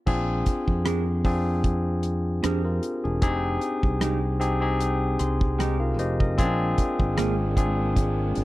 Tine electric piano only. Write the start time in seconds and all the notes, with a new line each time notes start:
0.06 C4 D4 F4 G#4
1.24 C4 D4 F4 G#4
2.44 G4 C5
2.64 F4 A#4
3.04 D4 G#4
3.22 C4 D#4 G4 G#4
4.40 C4 D#4 G4 G#4
4.61 C4 D#4 G4 G#4
5.19 C6
5.59 G5
5.80 F4 A#4 F5
5.99 G4 C5 D#5
6.20 A#4 D#5
6.38 C4 C#4 F4 G#4
6.45 D4
7.56 C4 D4 F4 G#4